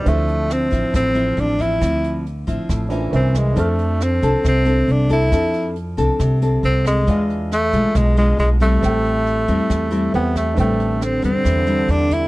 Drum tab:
HH |xxxxxxxx|xxxxxxxx|xxxxxxxx|xxxxxxxx|
SD |--r-r---|r---r--r|--r-r---|r---r--r|
BD |o--oo--o|o--oo--o|o--oo--o|o--oo--o|

HH |xxxxxxxx|xxxxxxxx|xxxxxxxx|
SD |--r-r---|r---r--r|--r-r---|
BD |o--oo--o|o--oo--o|o--oo--o|